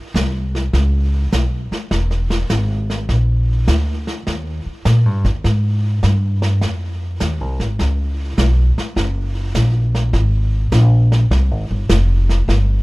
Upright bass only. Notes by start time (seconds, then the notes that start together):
0.14 C2
0.73 C#2
1.33 B1
1.71 muted upright bass stroke
1.91 E1
2.50 G#1
3.09 A#1
3.68 D2
4.27 D#2
4.66 muted upright bass stroke
4.85 A#2
5.06 G2
5.25 D#2
5.44 G#2
6.03 G2
6.62 F2
7.20 D#2
7.41 C2
7.60 G#1
7.80 C#2
8.38 B1
8.77 muted upright bass stroke
8.96 F#1
9.55 A#1
10.13 G#1
10.72 A#1
11.31 C2
11.51 G#1
11.71 G1
11.89 F1
12.48 G1